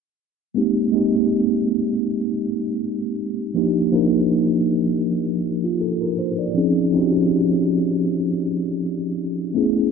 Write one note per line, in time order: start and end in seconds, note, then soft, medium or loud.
0.54 0.89 G#3 medium
0.54 0.90 A#3 medium
0.54 0.90 C4 medium
0.54 0.90 D#4 medium
0.54 0.91 G4 medium
0.92 2.29 G#3 medium
0.92 2.30 A#3 medium
0.92 2.30 C4 medium
0.92 2.31 D#4 medium
0.92 2.31 G4 medium
3.54 3.89 F3 medium
3.54 3.89 A#3 medium
3.54 3.90 D4 medium
3.54 3.90 D#4 medium
3.54 3.91 G4 medium
3.92 5.29 F3 medium
3.92 5.30 A#3 medium
3.92 5.30 D4 medium
3.92 5.30 D#4 medium
3.92 5.31 A#4 medium
5.64 5.80 F4 medium
5.81 6.00 A4 medium
6.01 6.17 A#4 medium
6.19 6.37 C5 medium
6.39 6.74 D5 medium
6.54 6.89 F3 medium
6.54 6.89 C4 medium
6.54 6.90 C#4 medium
6.54 6.90 D#4 medium
6.54 6.91 G#4 medium
6.92 8.29 F3 medium
6.92 8.30 C4 medium
6.92 8.30 C#4 medium
6.92 8.30 D#4 medium
6.92 7.01 F#4 medium
7.02 8.34 G4 medium
9.54 9.89 A3 medium
9.54 9.89 B3 medium
9.54 9.90 C#4 medium
9.54 9.90 E4 medium
9.54 9.91 G#4 medium